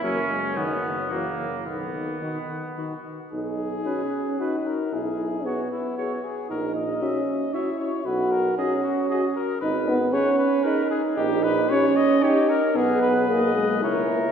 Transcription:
0.03 F#1 F#3 A#3 C#4 A#4
0.29 G#3
0.56 F#1 D#3 F#3 B3 F#4
1.10 F#1 E3 F#3 A#3 F#4
1.66 B1 D#3 B3
2.22 D#3 F#4
2.78 D#3 F#4
3.32 B1 D#4 G#4
3.86 C#4 F#4 B4
4.40 D#4 F#4 B4
4.66 A#4
4.92 B1 E4 G#4
5.45 B3 F#4 G#4 C#5
5.71 E4
5.97 F#4 G#4 C#5
6.24 G#4
6.49 A#1 D#4 A#4
6.75 D#5
7.02 C#4 F#4 E5
7.54 E4 F#4 C#5 E5
7.80 C#5
8.05 B1 F#4 B4
8.31 A#4
8.57 C#4 F#4 G#4 D#5
8.83 F#4
9.09 F#4 G#4 D#5
9.36 A#4
9.61 G#1 D#4 B4
9.88 B3
10.13 C#4 G#4 B4 C#5
10.39 B4
10.64 D#4 G#4 A#4 B4
10.90 G#4
11.17 A#1 D#4 G4
11.43 B4
11.70 C#4 G4 C#5
11.96 D#5
12.22 D#4 G4 C#5
12.49 A#4
12.75 B1 B3 G#4 B4
13.02 B4
13.29 A#3 D#5
13.55 G#3
13.82 C#2 E4 A#4 C#5

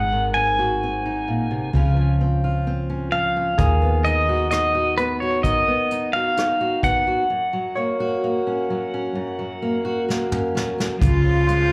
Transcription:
Already playing: G#1 G#2 G#3 F#5
0.12 D#3
0.34 C4 G#5
0.59 F#4
0.83 C4
1.06 D#4
1.28 A#2
1.51 C3
1.73 C#2 C#3 F3 C4 C#4 F4
1.96 F3
2.21 C4
2.44 F4
2.67 C4
2.90 C#4
3.12 F3 F5
3.36 C#4
3.58 D#2 D#3 G#4, kick, closed hi-hat
3.82 B3
4.04 D#4 D#5, closed hi-hat
4.29 F#4
4.51 D#4 D#5, cross-stick, closed hi-hat
4.75 F#4
4.98 B3 B4, closed hi-hat
5.20 F#4 C#5
5.43 D#3 D#5, kick, closed hi-hat
5.68 B3
5.91 D#4, closed hi-hat
6.13 F#4 F5
6.37 D#4, cross-stick, closed hi-hat
6.61 F#4
6.83 B3 F#5, kick, closed hi-hat
7.07 F#4
7.30 F#2
7.53 F#3
7.75 A#3 C#5
8.00 F#4
8.24 A#3
8.47 C#4
8.70 F#3
8.94 C#4
9.15 F#2
9.39 F#3
9.62 A#3
9.85 F#4
10.09 A#3, snare
10.32 C#4, mid tom
10.55 F#3, snare
10.78 C#4, snare
11.01 C#2 C#3 F3 G#3 F4, kick, closed hi-hat
11.25 F3
11.47 G#3 C5, closed hi-hat

